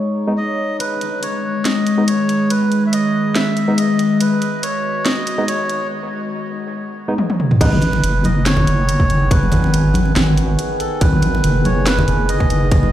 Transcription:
Already playing: synth drone G#3 D#4 C#5
0.28 tine electric piano G#3 B3 D#4
0.37 melodica D#5
0.80 synth drone D#3 G#3 G#4, melodica B4, closed hi-hat
1.01 closed hi-hat
1.23 melodica C#5, closed hi-hat
1.65 melodica D#5, snare, closed hi-hat
1.87 closed hi-hat
1.98 tine electric piano G#3 B3 D#4
2.08 melodica C#5, closed hi-hat
2.29 closed hi-hat
2.50 melodica B4, closed hi-hat
2.72 closed hi-hat
2.87 melodica E5
2.93 melodica D#5, closed hi-hat
3.35 melodica E5, snare, closed hi-hat
3.57 closed hi-hat
3.68 tine electric piano G#3 B3 D#4
3.78 melodica D#5, closed hi-hat
3.99 closed hi-hat
4.20 synth drone F#4, melodica B4, closed hi-hat
4.42 closed hi-hat
4.63 melodica C#5, closed hi-hat
5.05 melodica D#5, snare, closed hi-hat
5.27 closed hi-hat
5.38 tine electric piano G#3 B3 D#4
5.48 melodica C#5, closed hi-hat
5.69 closed hi-hat
7.08 tine electric piano G#3 B3 D#4
7.18 high tom
7.30 high tom
7.40 mid tom
7.51 mid tom
7.61 wobble bass G#1, synth drone D#3 B3 G#4, tine electric piano G#3 B3 D#4, melodica B4, kick, closed hi-hat, crash
7.72 high conga
7.82 closed hi-hat, muted conga
7.93 muted conga
8.03 wobble bass F#1, closed hi-hat
8.24 melodica D#5, closed hi-hat, high conga
8.46 melodica C#5, snare, clap, closed hi-hat
8.57 low conga
8.67 wobble bass F#1, closed hi-hat
8.89 closed hi-hat
9.00 kick
9.10 closed hi-hat
9.31 melodica B4, kick, closed hi-hat
9.43 high conga
9.52 wobble bass G#1, closed hi-hat, muted conga, low conga
9.64 muted conga
9.74 closed hi-hat
9.94 closed hi-hat, high conga
10.06 muted conga
10.16 wobble bass G#1, snare, clap, closed hi-hat
10.37 closed hi-hat
10.59 closed hi-hat
10.80 melodica A4, closed hi-hat
11.01 wobble bass G#1, melodica B4, kick, closed hi-hat
11.12 high conga
11.22 closed hi-hat, muted conga
11.35 muted conga
11.44 wobble bass F#1, closed hi-hat
11.65 melodica C#5, closed hi-hat, high conga
11.86 melodica B4, snare, clap, closed hi-hat
11.99 low conga
12.08 wobble bass F#1, closed hi-hat
12.29 melodica D#5, closed hi-hat
12.40 kick
12.50 closed hi-hat
12.71 melodica D#5, kick, closed hi-hat
12.83 high conga

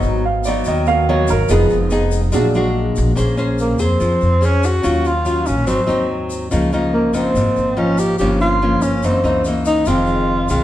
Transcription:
Already playing: nylon-string guitar G#2 F#3 B3 D#4, grand piano B3 F#4
0.02 upright bass G#1, shaker
0.25 grand piano F5
0.44 nylon-string guitar F#3 B3 D#4, grand piano D5, shaker
0.64 upright bass D#2, nylon-string guitar D#3, grand piano D#5, shaker
0.86 grand piano A#3 B3 F#4 F5, shaker
1.09 nylon-string guitar F#3 B3 D#4, grand piano C#5
1.28 upright bass G#1, grand piano A#4, shaker
1.49 upright bass F1, nylon-string guitar F3 B3 D#4 G#4, grand piano G#3 B3 D#4 B4, shaker
1.70 upright bass F1, shaker
1.90 nylon-string guitar B3 D#4 G#4, shaker
2.11 shaker
2.32 upright bass A#1, nylon-string guitar A#2 G#3 D4 F#4, grand piano F#3 G#3 D4, shaker
2.54 nylon-string guitar G#3 D4 F#4, shaker
2.96 upright bass A#1, shaker
3.15 upright bass A#1, nylon-string guitar A#3 C#4 G#4 C5, shaker
3.37 nylon-string guitar C#4 G#4 C5, shaker
3.58 tenor saxophone A#3, shaker
3.79 upright bass F2, tenor saxophone C4, nylon-string guitar G#4 C5, shaker
4.00 upright bass F2, nylon-string guitar F3, shaker
4.21 upright bass F2, shaker
4.41 nylon-string guitar C#4 G#4 C5, tenor saxophone C#4, shaker
4.63 tenor saxophone F#4, shaker
4.82 upright bass D#2, nylon-string guitar D#3 F#3 C#4 F4, shaker
5.05 tenor saxophone F4, shaker
5.25 nylon-string guitar F#3 C#4 F4, shaker
5.46 upright bass A#1, tenor saxophone C#4, shaker
5.67 upright bass G#1, nylon-string guitar G#2 F#3 C4 D#4, tenor saxophone C4, shaker
5.87 upright bass D#2, nylon-string guitar F#3 C4 D#4, shaker
6.30 shaker
6.51 upright bass C#2, nylon-string guitar C#3 F3 A#3 D#4, shaker
6.72 nylon-string guitar F3 A#3 D#4, shaker
6.93 tenor saxophone A#3
7.13 upright bass G#1, nylon-string guitar F3 A#3 D#4, tenor saxophone C4, shaker
7.34 upright bass G#1, nylon-string guitar G#2, shaker
7.56 upright bass G#1, shaker
7.77 nylon-string guitar F3 A#3 D#4, tenor saxophone C#4
7.98 tenor saxophone G4, shaker
8.18 upright bass G1, nylon-string guitar G2 F3 A#3 C#4, tenor saxophone G4, shaker
8.40 tenor saxophone F4, shaker
8.62 nylon-string guitar F3 A#3 C#4
8.82 upright bass G1, tenor saxophone C#4, shaker
9.02 upright bass F#1, nylon-string guitar F#2 E3 A#3 D#4, tenor saxophone C4, shaker
9.24 upright bass C#2, nylon-string guitar E3 A#3 D#4, shaker
9.44 nylon-string guitar E3 A#3 D#4, shaker
9.65 tenor saxophone D#4, shaker
9.84 upright bass F1, nylon-string guitar F2 D#3 G#3 C4, grand piano D#4 G#4, tenor saxophone F4, shaker
9.89 grand piano C5 F5
10.06 shaker
10.48 upright bass C2, nylon-string guitar D#3 G#3 C4, tenor saxophone F4, shaker

